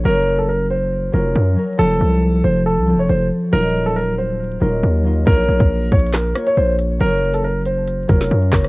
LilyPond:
<<
  \new Staff \with { instrumentName = "Grand piano" } { \time 4/4 \key ges \lydian \tempo 4 = 138 bes'8. a'16 bes'8 c''4 bes'4. | a'4. c''8 a'8. des''16 c''8 r8 | bes'8. a'16 bes'8 c''4 bes'4. | bes'4. des''8 bes'8. des''16 c''8 r8 |
bes'8. a'16 bes'8 c''4 bes'4. | }
  \new Staff \with { instrumentName = "Harp" } { \time 4/4 \key ges \lydian <ges des' bes'>4. r4 <ges des' f'>8. r16 <ges des' bes'>8 | <f c' a'>4. r4 <f c' a'>4 r8 | <ges ees' f'>4. r4 <ges ees' f'>8. r16 <ges ees' f'>8 | <bes f' des''>4. r4 <bes f' des''>4 r8 |
<ges des' bes'>4. r4 <ges des' f'>8. r16 <ges des' bes'>8 | }
  \new Staff \with { instrumentName = "808-style bass" } { \clef bass \time 4/4 \key ges \lydian ges,,2~ ges,,8 f,,8 ges,8 r8 | f,,8 c,4 f,,8. c,16. f,,16. f,,8 r8 | ees,,2~ ees,,8 ees,,8 ees,4 | bes,,8 bes,,16 bes,,8. bes,,4 r8 bes,,4 |
ges,,2~ ges,,8 f,,8 ges,8 ges,,8 | }
  \new DrumStaff \with { instrumentName = "Drums" } \drummode { \time 4/4 r4 r4 r4 r4 | r4 r4 r4 r4 | r4 r4 r4 r4 | <hh bd>8. <hh bd>16 \tuplet 3/2 { r16 r16 r16 <hh bd>16 hh16 hh16 } <hc hh sn>8 ss16 hh16 r8 hh8 |
hh8. hh16 r8 hh8 hh8 <hh bd>16 <hh sn>16 r8 <hc hh bd sn>16 ss16 | }
>>